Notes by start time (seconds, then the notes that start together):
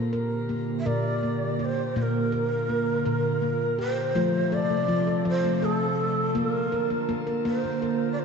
Already playing: D3 A#3 G4
0.13 A#4
0.49 A#3
0.79 E5
0.86 A#2 A#4 D5
1.23 A#3
1.59 G4 D5
1.64 C5
1.96 A#2 D3 A#3 F4 C5
2.02 A#4
2.32 A#4
2.69 A#3
3.05 A#2 A#4
3.42 A#3
3.79 G4 C5
4.15 C3 F3 A3 F4
4.52 A4 D5
4.70 A3
4.88 F3
5.07 A4
5.25 F3 C5
5.44 A3
5.62 A4
6.35 D3 A#3 A#4
6.72 A#4
6.90 A#3
7.09 A#3
7.27 A#4
7.45 A#3 B4
7.57 C5
7.64 A#3
7.82 A#4
8.12 D5
8.19 C5